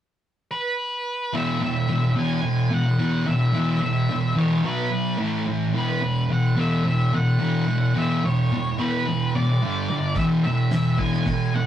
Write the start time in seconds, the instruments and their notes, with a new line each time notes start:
0.51 lead electric guitar B4
1.33 distorted electric guitar E2 B2 E3, lead electric guitar E5
1.60 distorted electric guitar E2 B2, lead electric guitar E5
1.88 distorted electric guitar E2 B2
2.15 distorted electric guitar E2 B2 E3, lead electric guitar G#5
2.42 distorted electric guitar E2 B2
2.70 distorted electric guitar E2 B2, lead electric guitar F#5
2.98 distorted electric guitar E2 B2 E3
3.25 distorted electric guitar E2 B2, lead electric guitar E5
3.53 distorted electric guitar E2 B2 E3
3.81 distorted electric guitar E2 B2, lead electric guitar E5
4.09 distorted electric guitar E2 B2
4.35 distorted electric guitar E2 B2 E3, lead electric guitar C#5
4.63 distorted electric guitar B2 F#3 B3, lead electric guitar B4
4.91 distorted electric guitar B2 F#3
5.18 distorted electric guitar A2 E3 A3
5.46 distorted electric guitar A2 E3
5.73 distorted electric guitar E2 B2 E3
5.78 lead electric guitar B4
6.01 distorted electric guitar E2 B2
6.29 distorted electric guitar E2 B2, lead electric guitar F#5
6.55 distorted electric guitar E2 B2 E3, lead electric guitar E5
6.84 distorted electric guitar E2 B2, lead electric guitar E5
7.13 distorted electric guitar E2 B2, lead electric guitar F#5
7.39 distorted electric guitar E2 B2 E3
7.67 distorted electric guitar E2 B2
7.94 distorted electric guitar E2 B2 E3, lead electric guitar E5
8.24 distorted electric guitar E2 B2, lead electric guitar C#5
8.52 distorted electric guitar E2 B2
8.78 distorted electric guitar E2 B2 E3, lead electric guitar B4
9.07 distorted electric guitar E2 B2
9.35 distorted electric guitar E2 B2, lead electric guitar D5
9.62 distorted electric guitar G2 D3 G3
9.89 distorted electric guitar G2 D3
10.16 distorted electric guitar E2 B2 E3, lead electric guitar E5, kick, open hi-hat
10.43 distorted electric guitar E2 B2, lead electric guitar E5
10.71 distorted electric guitar E2 B2, snare, open hi-hat
10.99 distorted electric guitar E2 B2 E3, lead electric guitar G#5, kick
11.13 snare
11.26 distorted electric guitar E2 B2, kick, open hi-hat
11.54 distorted electric guitar E2 B2, lead electric guitar F#5